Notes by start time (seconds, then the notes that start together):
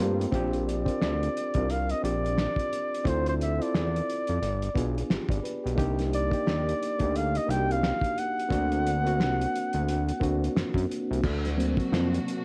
Already playing: C3 G3 A3 A#3 C4 F4 A4 D5 F5 G5 A5 A#5
0.00 G2 C4 F4 G4 C6, closed hi-hat
0.21 closed hi-hat
0.32 A#1 C4 C#4 F4 G4, kick, closed hi-hat
0.39 D4
0.53 closed hi-hat
0.68 D5, closed hi-hat
0.85 C4 D4 F4 A#4, kick, closed hi-hat
1.02 D2, finger snap, snare
1.23 closed hi-hat
1.37 closed hi-hat
1.54 C2 C4 D4 F4 A#4, kick, closed hi-hat
1.70 F5, closed hi-hat
1.89 D#5, closed hi-hat
2.02 A#1 C4 D4 F4 G4 D5, closed hi-hat
2.26 closed hi-hat
2.38 finger snap, snare
2.56 kick, closed hi-hat
2.73 closed hi-hat
2.95 closed hi-hat
3.04 D2 C4 E4 F4 A4 C5, kick, closed hi-hat
3.26 C5, closed hi-hat
3.41 E5, closed hi-hat
3.59 C4 E4 F4 A4 D5, closed hi-hat
3.74 E2, finger snap, snare
3.96 closed hi-hat
4.10 closed hi-hat
4.27 F2, closed hi-hat
4.42 G1, closed hi-hat
4.62 closed hi-hat
4.74 B1 B3 D4 F4 G#4, kick, closed hi-hat
4.98 closed hi-hat
5.10 G#1 G4, finger snap, snare
5.29 G#1 D5, kick, closed hi-hat
5.44 B4, closed hi-hat
5.64 B1 G4, closed hi-hat
5.76 C2 A#3 D4 D#4 G4, kick, closed hi-hat
5.99 snare, closed hi-hat
6.13 D5, closed hi-hat
6.30 A#3 D4 D#4 G4, kick, closed hi-hat
6.47 D#2, finger snap, snare
6.69 closed hi-hat
6.83 closed hi-hat
6.99 D2 A#3 D4 D#4 G4, kick, closed hi-hat
7.16 F5, closed hi-hat
7.35 D#5, closed hi-hat
7.47 C2 A#3 D4 D#4 F#4 G5, closed hi-hat
7.57 G4
7.71 F5, closed hi-hat
7.83 finger snap, snare
8.01 kick, closed hi-hat
8.18 F#5, closed hi-hat
8.40 closed hi-hat
8.49 D2 A#3 C4 D4 F#4, kick, closed hi-hat
8.72 closed hi-hat
8.87 closed hi-hat
9.04 A#3 C4 D4 F#4, closed hi-hat
9.19 C2, finger snap, snare
9.41 closed hi-hat
9.56 closed hi-hat
9.73 D2, closed hi-hat
9.88 closed hi-hat
10.09 closed hi-hat
10.20 D2 A#3 C4 D4 F#4, kick, closed hi-hat
10.44 closed hi-hat
10.56 F#2, finger snap, snare
10.74 F#2, kick, closed hi-hat
10.91 closed hi-hat
11.11 C2, closed hi-hat
11.22 D2 C3 A#3 D4 F#4, kick, crash
11.45 snare, closed hi-hat
11.57 F#3 A#3 C4, closed hi-hat
11.77 kick, closed hi-hat
11.92 F2, finger snap, snare
12.14 closed hi-hat
12.28 closed hi-hat